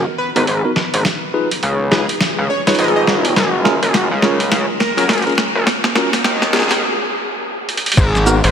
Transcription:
0.18 0.30 B4 medium
0.36 0.46 G#1 loud
0.36 0.42 B3 medium
0.36 0.42 D#4 medium
0.36 0.42 F#4 medium
0.36 0.42 A#4 medium
0.36 0.44 B4 medium
0.36 closed hi-hat medium
0.47 0.63 G#1 loud
0.47 closed hi-hat medium
0.65 0.71 B3 medium
0.65 0.71 D#4 medium
0.65 0.71 F#4 medium
0.65 0.71 A#4 medium
0.76 snare medium
0.94 1.04 G#1 loud
0.94 closed hi-hat medium
1.05 snare medium
1.05 closed hi-hat medium
1.34 1.48 D#4 medium
1.34 1.48 F4 medium
1.34 1.48 G#4 medium
1.34 1.48 B4 medium
1.51 closed hi-hat medium
1.63 2.07 C#2 loud
1.63 closed hi-hat medium
1.91 2.01 D#4 medium
1.91 2.01 F4 medium
1.91 2.07 G#4 medium
1.91 2.01 G#4 medium
1.91 2.01 B4 medium
1.91 snare medium
2.09 closed hi-hat medium
2.21 snare medium
2.21 closed hi-hat medium
2.39 2.48 C#2 loud
2.50 2.61 C#5 medium
2.67 3.35 D#4 medium
2.67 3.35 F4 medium
2.67 3.35 G#4 medium
2.67 3.35 B4 loud
2.67 2.75 C#5 medium
2.67 snare medium
2.67 closed hi-hat medium
2.69 closed hi-hat medium
2.75 closed hi-hat soft
2.79 3.34 G#1 loud
2.79 2.90 D#5 medium
2.79 closed hi-hat medium
2.84 closed hi-hat soft
2.88 closed hi-hat soft
2.96 3.03 D#5 medium
3.07 snare medium
3.25 closed hi-hat medium
3.36 3.80 F#1 medium
3.36 snare medium
3.36 closed hi-hat medium
3.64 3.74 C#4 loud
3.64 3.74 F4 medium
3.64 3.74 G#4 medium
3.64 3.74 A#4 loud
3.64 snare medium
3.83 4.09 F#1 medium
3.83 closed hi-hat medium
3.94 snare medium
3.94 closed hi-hat medium
4.11 4.50 C#2 loud
4.22 4.37 C#4 medium
4.22 4.37 F4 medium
4.22 4.37 G#4 medium
4.22 4.37 A#4 medium
4.22 snare medium
4.40 closed hi-hat medium
4.52 4.66 C#2 medium
4.52 snare medium
4.52 closed hi-hat medium
4.80 4.91 A#4 medium
4.80 snare medium
4.97 5.07 F#2 medium
4.97 5.03 C#4 medium
4.97 5.03 F4 medium
4.97 5.03 G#4 medium
4.97 5.05 A#4 medium
4.97 5.04 A#4 loud
4.97 closed hi-hat medium
5.09 5.24 F#1 loud
5.09 snare medium
5.09 closed hi-hat medium
5.13 closed hi-hat soft
5.18 closed hi-hat soft
5.22 5.32 G#4 medium
5.22 5.32 A#4 medium
5.22 closed hi-hat soft
5.26 5.32 C#4 medium
5.26 5.32 F4 medium
5.26 closed hi-hat soft
5.30 closed hi-hat soft
5.32 closed hi-hat soft
5.35 snare medium
5.35 closed hi-hat soft
5.55 5.65 F#1 loud
5.67 snare medium
5.67 closed hi-hat medium
5.84 snare medium
5.95 6.10 C#4 medium
5.95 6.10 F4 medium
5.95 6.10 F#4 medium
5.95 6.10 A#4 medium
5.95 snare medium
6.13 snare medium
6.13 closed hi-hat medium
6.24 6.68 D#2 loud
6.24 snare loud
6.24 closed hi-hat medium
6.42 snare medium
6.53 6.62 C#4 medium
6.53 6.62 F4 medium
6.53 6.62 F#4 medium
6.53 6.69 G#4 loud
6.53 6.62 A#4 medium
6.53 snare medium
6.56 snare medium
6.59 snare medium
6.62 snare soft
6.68 snare soft
6.71 6.82 D#2 loud
6.71 snare medium
6.71 closed hi-hat medium
7.69 closed hi-hat medium
7.77 closed hi-hat medium
7.86 closed hi-hat medium
7.92 closed hi-hat medium
7.97 8.41 G#1 loud
7.97 kick loud
7.97 closed hi-hat medium
7.97 crash loud
7.97 shaker soft
8.15 snare soft
8.15 shaker soft
8.26 8.35 B3 loud
8.26 8.35 D#4 medium
8.26 8.36 F#4 medium
8.26 8.35 A#4 loud
8.26 shaker medium
8.44 8.51 G#1 medium
8.44 closed hi-hat medium

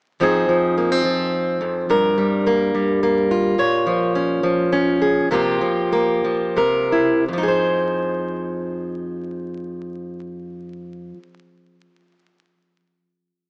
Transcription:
0.20 1.60 F2 medium
0.20 0.48 F3 soft
0.20 0.77 C4 soft
0.20 1.87 D#4 soft
0.20 1.87 G#4 medium
0.49 1.05 F3 soft
0.77 0.92 A#3 soft
0.92 1.90 C4 soft
1.05 2.17 F3 soft
1.61 1.89 F2 soft
1.90 3.54 G2 medium
1.90 3.59 A#4 medium
2.18 2.73 G3 soft
2.47 3.03 A#3 soft
2.75 3.55 G3 soft
3.03 4.15 A#3 soft
3.31 5.01 F4 soft
3.58 5.28 A#2 medium
3.58 5.28 C#5 medium
3.87 4.42 F3 soft
4.15 4.71 C#4 soft
4.43 5.30 F3 medium
4.73 5.28 C#4 soft
5.02 5.28 G#4 soft
5.31 5.61 C3 medium
5.31 5.60 F3 medium
5.31 5.91 A#3 soft
5.31 6.55 F4 soft
5.31 6.57 G4 medium
5.61 6.23 F3 soft
5.93 6.92 A#3 soft
6.24 6.58 F3 soft
6.57 7.27 C3 medium
6.57 7.23 A#4 medium
6.92 7.24 E4 soft
7.28 11.12 F2 medium
7.33 11.17 F3 soft
7.38 11.22 D#4 soft
7.43 11.27 G#4 soft
7.48 11.32 C5 soft

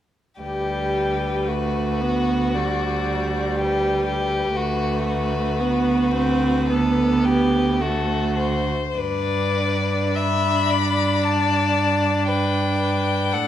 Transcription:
0.40 4.53 D2 soft
0.40 1.49 G3 soft
0.40 1.49 G4 soft
0.40 2.56 B4 soft
1.48 2.03 A3 soft
1.48 3.57 F#4 soft
2.02 2.56 B3 soft
2.55 4.56 G3 soft
2.55 3.58 D5 soft
3.56 4.05 G4 soft
3.56 7.80 B4 soft
4.06 4.58 G4 soft
4.56 8.71 D2 soft
4.56 5.62 A3 soft
4.56 5.07 F#4 soft
5.07 6.67 F#4 soft
5.60 6.14 B3 soft
6.14 6.71 C4 medium
6.70 7.82 B3 soft
6.70 7.26 A4 soft
7.25 7.83 G4 soft
7.81 8.76 A3 soft
7.81 8.76 F#4 soft
7.81 8.38 A4 soft
8.38 8.99 C5 soft
8.97 13.35 G2 soft
8.97 13.47 D4 soft
8.97 10.18 B4 soft
8.97 10.17 D5 soft
10.16 10.71 E5 soft
10.16 11.25 B5 medium
10.70 12.29 D5 soft
11.23 12.28 A5 medium
12.28 12.79 B4 soft
12.28 13.35 G5 medium
12.80 13.34 B4 soft
13.33 13.47 A2 soft
13.33 13.47 A4 soft
13.33 13.47 F#5 medium

